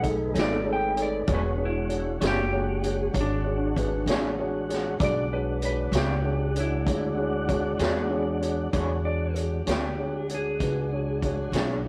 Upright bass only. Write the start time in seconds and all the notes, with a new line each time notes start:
Already playing: B1
0.35 G#1
1.27 E1
2.22 F#1
3.14 G#1
4.06 A1
5.00 B1
5.92 C#2
6.86 D2
7.79 E2
8.73 E2
9.67 D2
10.60 C#2
11.52 B1